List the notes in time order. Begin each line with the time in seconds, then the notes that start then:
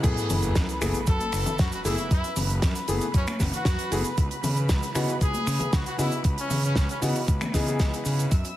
0.03 F#2 E3 A3 B3 G#4 B4 B5, kick, closed hi-hat, crash, sub drop, cabasa
0.17 closed hi-hat, cabasa
0.30 F#1, open hi-hat, low conga, cabasa
0.43 closed hi-hat, cabasa
0.44 cabasa
0.55 F#2, kick, snare, closed hi-hat, cabasa
0.69 closed hi-hat, cabasa
0.81 F#1 E3 A3 B3 G#4, finger snap, open hi-hat, cabasa
0.94 closed hi-hat, cabasa
1.07 F#2 A4, kick, closed hi-hat, cabasa
1.20 closed hi-hat, high conga, cabasa
1.32 F#1, finger snap, open hi-hat, cabasa
1.46 muted fingered electric bass stroke, closed hi-hat, low conga, cabasa
1.59 F#2 F#4, kick, snare, closed hi-hat, cabasa
1.72 F#4, closed hi-hat, cabasa
1.84 F#1 E3 A3 B3 E4 G#4, open hi-hat, cabasa
1.86 cabasa
1.98 closed hi-hat, cabasa
2.11 F#2 E4, kick, closed hi-hat, cabasa
2.24 closed hi-hat, cabasa
2.36 F#1, open hi-hat, low conga, cabasa
2.50 closed hi-hat, cabasa
2.62 F#2, kick, snare, closed hi-hat, cabasa
2.75 closed hi-hat, cabasa
2.88 F#1 E3 A3 B3 G#4, open hi-hat, cabasa
3.01 closed hi-hat, cabasa
3.14 F#2 C#4, kick, closed hi-hat, cabasa
3.27 C#4, finger snap, muted fingered electric bass stroke, closed hi-hat, high conga, cabasa
3.40 F#1, kick, snare, open hi-hat, low conga, cabasa
3.53 F#4, muted fingered electric bass stroke, closed hi-hat, cabasa
3.65 F#2, kick, snare, closed hi-hat, cabasa
3.79 closed hi-hat, cabasa
3.91 F#1 E3 A3 B3 G#4, open hi-hat, cabasa
4.04 closed hi-hat, cabasa
4.18 C#2, kick, closed hi-hat, cabasa
4.31 closed hi-hat, cabasa
4.43 C#3, open hi-hat, low conga, cabasa
4.56 closed hi-hat, cabasa
4.69 C#2, kick, snare, closed hi-hat, cabasa
4.82 closed hi-hat, cabasa
4.95 C#3 E3 B3 D#4 F#4, finger snap, open hi-hat, cabasa
5.08 closed hi-hat, cabasa
5.20 C#2 G#4, kick, closed hi-hat, cabasa
5.22 cabasa
5.34 closed hi-hat, high conga, cabasa
5.47 C#3, finger snap, open hi-hat, cabasa
5.60 muted fingered electric bass stroke, closed hi-hat, low conga, cabasa
5.72 C#2 F#4, kick, snare, closed hi-hat, cabasa
5.86 F#4, closed hi-hat, cabasa
5.98 C#3 E3 B3 D#4 E4 F#4, open hi-hat, cabasa
6.11 closed hi-hat, cabasa
6.24 C#2, kick, closed hi-hat, cabasa
6.38 C#4, closed hi-hat, cabasa
6.50 C#3, open hi-hat, low conga, cabasa
6.63 C#4, closed hi-hat, cabasa
6.76 C#2 C#4, kick, snare, closed hi-hat, cabasa
6.89 C#4, closed hi-hat, cabasa
7.02 C#3 E3 B3 D#4 F#4, open hi-hat, cabasa
7.15 open hi-hat, cabasa
7.28 C#2, kick, closed hi-hat, cabasa
7.41 finger snap, muted fingered electric bass stroke, closed hi-hat, high conga, low conga, cabasa
7.53 C#3 E3 B3 D#4 G#4, kick, snare, open hi-hat, low conga, cabasa
7.66 E3 B3 D#4 G#4, closed hi-hat, cabasa
7.79 C#2, kick, snare, closed hi-hat, cabasa
7.93 closed hi-hat, cabasa
8.05 C#3, open hi-hat, cabasa
8.19 closed hi-hat, cabasa
8.31 F#2 E5 E6, kick, closed hi-hat, cabasa
8.45 closed hi-hat, cabasa